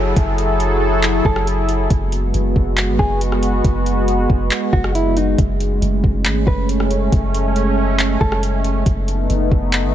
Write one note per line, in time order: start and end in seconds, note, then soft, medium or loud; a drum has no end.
0.00 0.14 F#1 loud
0.00 1.87 F#3 medium
0.00 1.87 E4 medium
0.00 1.87 G#4 medium
0.00 1.87 A4 medium
0.00 downlifter medium
0.16 1.21 F#1 loud
0.16 kick loud
0.16 closed hi-hat medium
0.38 closed hi-hat medium
0.60 closed hi-hat medium
1.03 clap loud
1.03 closed hi-hat medium
1.25 1.88 F#1 loud
1.25 1.46 A4 medium
1.25 kick loud
1.36 cross-stick loud
1.47 closed hi-hat medium
1.69 closed hi-hat medium
1.90 2.32 F#1 loud
1.90 8.82 G#3 medium
1.90 5.35 B3 medium
1.90 5.35 F#4 medium
1.90 kick loud
1.90 closed hi-hat medium
2.12 closed hi-hat medium
2.34 2.55 F#1 loud
2.34 closed hi-hat medium
2.56 2.90 F#1 loud
2.56 kick loud
2.77 clap loud
2.77 closed hi-hat medium
2.88 2.98 G#1 loud
2.99 3.62 F#1 loud
2.99 3.20 G#4 medium
2.99 kick loud
3.21 closed hi-hat medium
3.32 cross-stick medium
3.43 closed hi-hat medium
3.64 4.27 F#1 loud
3.64 kick loud
3.64 closed hi-hat medium
3.86 closed hi-hat medium
4.08 closed hi-hat medium
4.30 4.51 F#1 loud
4.30 kick loud
4.51 clap loud
4.51 closed hi-hat medium
4.73 5.36 F#1 loud
4.73 4.94 F#4 medium
4.73 kick loud
4.84 cross-stick loud
4.95 5.16 E4 medium
4.95 closed hi-hat medium
5.17 5.37 D#4 medium
5.17 closed hi-hat medium
5.38 5.80 F#1 loud
5.38 8.83 A3 medium
5.38 8.83 C#4 medium
5.38 kick loud
5.38 closed hi-hat medium
5.60 closed hi-hat medium
5.82 6.03 F#1 loud
5.82 closed hi-hat medium
6.04 6.27 F#1 loud
6.04 kick loud
6.25 6.46 G#1 loud
6.25 clap loud
6.25 closed hi-hat medium
6.47 7.10 F#1 loud
6.47 6.68 B4 medium
6.47 kick loud
6.69 closed hi-hat medium
6.80 cross-stick medium
6.91 closed hi-hat medium
7.12 8.17 F#1 loud
7.12 kick loud
7.12 closed hi-hat medium
7.34 closed hi-hat medium
7.56 closed hi-hat medium
7.99 clap loud
7.99 closed hi-hat medium
8.21 8.83 F#1 loud
8.21 8.42 A4 medium
8.21 kick loud
8.32 cross-stick loud
8.43 closed hi-hat medium
8.64 closed hi-hat medium
8.86 9.28 F#1 loud
8.86 9.95 A3 medium
8.86 9.95 B3 medium
8.86 9.95 D#4 loud
8.86 kick loud
8.86 closed hi-hat medium
9.08 closed hi-hat medium
9.30 9.51 F#1 loud
9.30 closed hi-hat medium
9.51 9.86 F#1 loud
9.51 kick loud
9.73 clap loud
9.73 closed hi-hat medium
9.84 9.94 G#1 loud